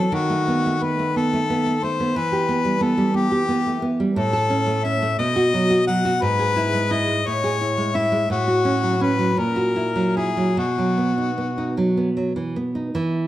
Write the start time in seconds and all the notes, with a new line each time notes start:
Already playing: F#3 A4
0.12 D#3 F#4
0.30 A3
0.48 B3
0.66 A3
0.82 B3 B4
0.99 A3
1.16 B3 A4
1.33 A3
1.50 B3
1.66 A3
1.83 A3 C5
2.00 B3
2.16 E3 B4
2.32 G4
2.49 B3
2.65 G3
2.81 B3 A4
2.98 G3
3.14 B3 G4
3.31 G4
3.49 B3
3.66 A3
3.82 B3
4.00 G3
4.16 A2 A4
4.33 A4
4.50 C#4
4.67 A3
4.85 C#4 E5
5.02 A3
5.19 B2 D#5
5.36 F#4
5.54 F#3
5.70 F#4
5.87 F#3 F#5
6.05 F#4
6.22 G#2 B4
6.39 G#4
6.56 E4
6.74 G#3
6.91 E4 D#5
7.08 G#3
7.27 A2 C#5
7.44 G#4
7.61 E4
7.77 G#3
7.95 E4 E5
8.12 G#3
8.30 A2 F#4
8.48 F#4
8.65 C#4
8.83 F#3
9.01 C#4 B4
9.19 F#3
9.37 A#2 A#4
9.56 F#4
9.76 E4
9.96 F#3
10.16 E4 G#4
10.37 F#3
10.57 B2 F#4
10.78 F#3
10.98 B3
11.18 D#4
11.38 B3
11.58 D#4
11.77 F#3
11.97 B3
12.17 F#3
12.36 E3
12.56 B3
12.75 D#4
12.95 E3